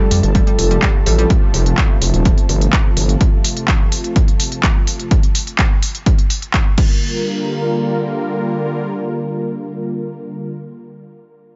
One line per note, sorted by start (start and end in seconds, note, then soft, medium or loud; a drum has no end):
0.00 5.07 C3 medium
0.00 5.07 F3 medium
0.00 5.07 A3 medium
0.00 5.07 F4 medium
0.00 0.26 A4 loud
0.00 5.07 A5 medium
0.11 0.21 F2 loud
0.11 0.20 G3 medium
0.11 open hi-hat loud
0.23 0.42 G1 medium
0.23 closed hi-hat soft
0.35 0.40 G3 medium
0.35 0.97 A4 loud
0.35 kick loud
0.35 closed hi-hat soft
0.47 0.55 G3 medium
0.47 closed hi-hat soft
0.59 0.78 F1 medium
0.59 open hi-hat loud
0.71 0.76 G3 medium
0.71 closed hi-hat soft
0.82 0.91 G3 medium
0.82 kick loud
0.82 clap loud
0.82 closed hi-hat soft
1.06 1.25 A1 loud
1.06 1.11 G3 medium
1.06 1.30 A4 medium
1.06 open hi-hat loud
1.18 1.27 G3 medium
1.18 closed hi-hat soft
1.30 kick loud
1.30 closed hi-hat soft
1.54 1.73 F1 loud
1.54 open hi-hat loud
1.66 closed hi-hat soft
1.78 kick loud
1.78 clap loud
1.78 closed hi-hat soft
2.02 2.11 F1 loud
2.02 open hi-hat loud
2.14 2.32 D#1 medium
2.14 closed hi-hat soft
2.25 kick loud
2.25 closed hi-hat soft
2.38 closed hi-hat soft
2.49 2.68 G1 loud
2.49 open hi-hat loud
2.61 closed hi-hat soft
2.73 kick loud
2.73 clap loud
2.73 closed hi-hat soft
2.97 3.16 G1 medium
2.97 open hi-hat loud
3.09 closed hi-hat soft
3.21 kick loud
3.21 closed hi-hat soft
3.44 open hi-hat loud
3.57 closed hi-hat soft
3.68 kick loud
3.68 clap loud
3.68 closed hi-hat soft
3.92 open hi-hat loud
4.04 closed hi-hat soft
4.16 kick loud
4.16 closed hi-hat soft
4.28 closed hi-hat soft
4.40 open hi-hat loud
4.52 closed hi-hat soft
4.63 kick loud
4.63 clap loud
4.63 closed hi-hat soft
4.87 open hi-hat loud
5.00 closed hi-hat soft
5.11 kick loud
5.11 closed hi-hat soft
5.23 closed hi-hat soft
5.35 open hi-hat loud
5.47 closed hi-hat soft
5.59 kick loud
5.59 clap loud
5.59 closed hi-hat soft
5.83 open hi-hat loud
5.95 closed hi-hat soft
6.06 kick loud
6.06 closed hi-hat soft
6.19 closed hi-hat soft
6.30 open hi-hat loud
6.42 closed hi-hat soft
6.54 kick loud
6.54 clap loud
6.54 closed hi-hat soft
6.78 10.49 D3 medium
6.78 10.49 G3 medium
6.78 10.49 A#3 medium
6.78 10.49 F4 medium
6.78 10.49 A#4 medium
6.78 kick loud
6.78 crash medium